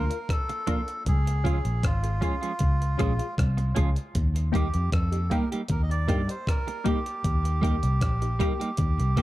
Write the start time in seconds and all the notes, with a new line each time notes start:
Already playing: A#4
0.10 F4 A#4, closed hi-hat
0.29 A4, kick, cross-stick, closed hi-hat
0.49 muted clean electric guitar stroke, closed hi-hat
0.67 F3 A#3 D4 F4 A#4, kick, closed hi-hat
0.88 closed hi-hat
1.06 C#2 G#4, kick, closed hi-hat
1.27 closed hi-hat
1.44 F3 G#3 C#4 F4 G#4, kick, closed hi-hat
1.65 A#1, closed hi-hat
1.83 G#1 F4, kick, cross-stick, closed hi-hat
2.03 F4 G#4, closed hi-hat
2.21 F3 G#3 C#4 F4 G#4, kick, closed hi-hat
2.41 F3 G#3 C#4 F4, closed hi-hat
2.59 C#2, kick, closed hi-hat
2.82 closed hi-hat
2.98 A#1 F3 G#3 C#4 F4 G#4, kick, cross-stick, closed hi-hat
3.18 F4 G#4, closed hi-hat
3.38 C2, kick, cross-stick, closed hi-hat
3.57 muted clean electric guitar stroke, closed hi-hat
3.75 C#2 F3 G#3 C#4 F4 G#4, kick, closed hi-hat
3.96 closed hi-hat
4.15 D#2, kick, closed hi-hat
4.36 closed hi-hat
4.52 G3 A#3 D#4 G4, kick, closed hi-hat
4.56 G4
4.74 F2, closed hi-hat
4.92 F2 A4, kick, cross-stick, closed hi-hat
5.12 D#4 G4, closed hi-hat
5.30 G3 A#3 D#4 G4 A#4, kick, closed hi-hat
5.52 G3 A#3 D#4 G4, closed hi-hat
5.68 D#2 A#4, kick, closed hi-hat
5.83 D#5
5.91 D5, closed hi-hat
6.08 G2 G3 A#3 D#4 G4, kick, cross-stick, closed hi-hat
6.28 D#4 G4 C5, closed hi-hat
6.47 A#4, kick, cross-stick, closed hi-hat
6.68 muted clean electric guitar stroke, closed hi-hat
6.84 G3 A#3 D#4 G4, kick, closed hi-hat
7.06 closed hi-hat
7.24 D#2, kick, closed hi-hat
7.45 closed hi-hat
7.62 G3 A#3 D#4 G4, kick, closed hi-hat
7.83 C2, closed hi-hat
8.01 A#1, kick, cross-stick, closed hi-hat
8.22 D#4 G4, closed hi-hat
8.39 G3 A#3 D#4 G4, kick, closed hi-hat
8.60 G3 A#3 D#4 G4, closed hi-hat
8.77 D#2, kick, closed hi-hat
8.99 C2, closed hi-hat
9.17 D2 G3 A#3 D#4 G4, kick, cross-stick, closed hi-hat